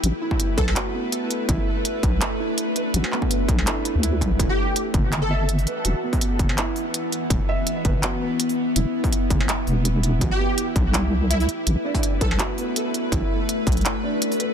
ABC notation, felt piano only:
X:1
M:4/4
L:1/8
Q:"Swing 16ths" 1/4=165
K:Ador
V:1 name="Felt piano"
z E z B F B, z2 | E z4 E z B | F B, z2 E E E z | E z4 e z B |
F B, z2 E z3 | z e z B F B, z2 | E z6 E | F B, z2 E z3 |
z D z B F B, z2 | E z4 D z B |]